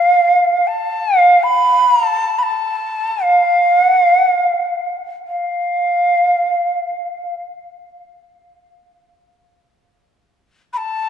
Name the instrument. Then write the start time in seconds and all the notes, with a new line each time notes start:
shakuhachi
Already playing: F5
0.67 A5
1.20 F5
1.43 B5
1.93 A#5
2.05 A5
2.38 B5
2.43 A5
3.23 F5
3.83 F#5
3.99 F5
4.16 F#5
4.33 F5
5.27 F5
10.73 A5 B5